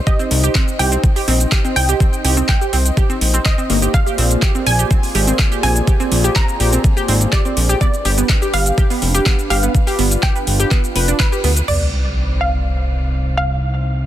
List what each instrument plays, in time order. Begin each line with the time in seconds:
Already playing: analog synth pad D#4 C5
0.07 synth pluck G4 D#5, analog synth pad D#5, kick, closed hi-hat, shaker
0.19 synth pluck C4, closed hi-hat, shaker
0.31 analog synth bass C2, open hi-hat
0.44 synth pluck G4, closed hi-hat, shaker
0.55 synth pluck C4, kick, clap, closed hi-hat, shaker
0.68 closed hi-hat, shaker
0.79 analog synth bass C2, synth pluck G4 G5, open hi-hat
0.92 synth pluck C4, closed hi-hat, shaker
1.04 kick, closed hi-hat, shaker
1.16 synth pluck G4, open hi-hat, shaker
1.28 analog synth bass A#1, synth pluck C4, open hi-hat
1.40 closed hi-hat, shaker
1.52 synth pluck G4, kick, clap, closed hi-hat, shaker
1.65 synth pluck C4, closed hi-hat, shaker
1.76 analog synth bass C2, synth pluck G5, open hi-hat
1.89 synth pluck G4, closed hi-hat, shaker
2.00 synth pluck C4, kick, closed hi-hat, shaker
2.13 closed hi-hat, shaker
2.25 analog synth bass C2, synth pluck G4, open hi-hat
2.37 synth pluck C4, shaker
2.49 synth pluck G5, kick, clap, closed hi-hat, shaker
2.61 synth pluck G4, closed hi-hat, shaker
2.73 analog synth bass C2, synth pluck C4, open hi-hat
2.86 closed hi-hat, shaker
2.97 synth pluck G4, kick, closed hi-hat, shaker
3.10 synth pluck C4, closed hi-hat, shaker
3.21 analog synth bass A#1, open hi-hat
3.34 synth pluck C4, closed hi-hat, shaker
3.46 synth pluck C5 D#5, kick, clap, closed hi-hat, shaker
3.58 synth pluck C4, closed hi-hat, shaker
3.70 analog synth bass G1, synth pluck A#3, open hi-hat
3.82 synth pluck G4, closed hi-hat, shaker
3.94 analog synth pad A#3 F4 G#4 D5, synth pluck F5, kick, closed hi-hat, shaker
4.06 synth pluck G4, closed hi-hat, shaker
4.18 analog synth bass A#1, synth pluck C4, open hi-hat
4.31 closed hi-hat, shaker
4.42 synth pluck G4, kick, clap, closed hi-hat, shaker
4.55 synth pluck C4, closed hi-hat, shaker
4.67 analog synth bass A#1, synth pluck G#5, open hi-hat
4.79 synth pluck G4, closed hi-hat, shaker
4.91 synth pluck C4, kick, closed hi-hat, shaker
5.03 open hi-hat, shaker
5.15 analog synth bass G#1, synth pluck G4, open hi-hat
5.27 synth pluck C4, closed hi-hat, shaker
5.39 kick, clap, closed hi-hat, shaker
5.52 synth pluck G4, closed hi-hat, shaker
5.63 analog synth bass A#1, synth pluck C4 G#5, open hi-hat
5.76 closed hi-hat, shaker
5.87 synth pluck G4, kick, closed hi-hat, shaker
6.00 synth pluck C4, closed hi-hat, shaker
6.12 analog synth bass A#1, open hi-hat
6.24 synth pluck G4, closed hi-hat, shaker
6.36 synth pluck C4 A#5, kick, clap, closed hi-hat, shaker
6.48 closed hi-hat, shaker
6.60 analog synth bass A#1, synth pluck G4, open hi-hat
6.73 synth pluck C4, closed hi-hat, shaker
6.84 kick, closed hi-hat, shaker
6.97 synth pluck G4, closed hi-hat, shaker
7.08 analog synth bass G#1, synth pluck C4, open hi-hat
7.21 closed hi-hat, shaker
7.33 synth pluck G4 D5, kick, clap, closed hi-hat, shaker
7.45 synth pluck C4, closed hi-hat, shaker
7.57 analog synth bass A#1, open hi-hat
7.69 synth pluck G4, closed hi-hat, shaker
7.81 synth pluck B3 D5, analog synth pad D4 G4 B4, kick, closed hi-hat, shaker
7.94 closed hi-hat, shaker
8.05 analog synth bass G1, synth pluck G4, open hi-hat
8.18 synth pluck B3, closed hi-hat, shaker
8.29 kick, clap, closed hi-hat, shaker
8.42 synth pluck G4, closed hi-hat, shaker
8.54 analog synth bass G1, synth pluck B3 F5, open hi-hat
8.66 closed hi-hat, shaker
8.78 synth pluck G4, kick, closed hi-hat, shaker
8.90 synth pluck B3, open hi-hat, shaker
9.02 analog synth bass F1, open hi-hat
9.15 synth pluck G4, closed hi-hat, shaker
9.26 synth pluck B3, kick, clap, closed hi-hat, shaker
9.39 closed hi-hat, shaker
9.50 analog synth bass G1, synth pluck G4 F5, open hi-hat
9.63 synth pluck B3, closed hi-hat, shaker
9.75 analog synth pad F4, kick, closed hi-hat, shaker
9.87 synth pluck G4, open hi-hat, shaker
9.99 analog synth bass G1, synth pluck B3, open hi-hat
10.11 closed hi-hat, shaker
10.23 synth pluck G4 G5, kick, clap, closed hi-hat, shaker
10.36 synth pluck B3, closed hi-hat, shaker
10.47 analog synth bass G1, open hi-hat
10.60 synth pluck G4, closed hi-hat, shaker
10.71 synth pluck B3, kick, clap, closed hi-hat, shaker
10.84 closed hi-hat, shaker
10.96 analog synth bass F1, synth pluck B4, open hi-hat
11.08 synth pluck D4, closed hi-hat, shaker
11.20 synth pluck B4, kick, clap, closed hi-hat, shaker
11.32 synth pluck G4, closed hi-hat, shaker
11.44 analog synth bass D2, synth pluck B3, open hi-hat
11.57 closed hi-hat, shaker
11.68 analog synth bass C2, analog synth pad C4 D#4 C5, synth pluck D5, crash, sub drop
12.41 synth pluck F5
13.37 synth pluck F5